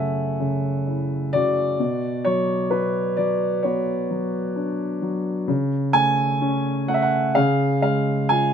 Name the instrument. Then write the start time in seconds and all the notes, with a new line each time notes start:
grand piano
Already playing: F#2 C#3 A3 A4 E5 F#5 G#5
0.40 C#3
0.87 E4
1.33 C#3 F#4 D5
1.80 B2
2.25 F#3 C#5
2.71 B3 B4
3.17 F#3 D5
3.63 B3 F#4 C#5
4.11 F#3
4.56 D4
5.02 F#3
5.48 C#3
5.93 A3 G#5
6.41 C#4
6.88 A3 F#5
6.94 E5
7.02 F#5
7.35 C#3 G#4 F5
7.82 G#3 F5
8.29 F4 G#5